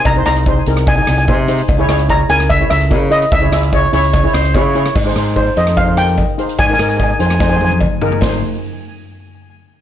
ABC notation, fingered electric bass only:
X:1
M:4/4
L:1/8
Q:1/4=147
K:Ab
V:1 name="Fingered electric bass" clef=bass
C,, C,,2 C,,2 C,, C,2 | D,, D,,2 D,,2 D,, D,2 | D,, D,,2 D,,2 D,, D,2 | A,, A,,2 F,,4 z |
A,, A,,2 F,,4 z | A,,, z6 z |]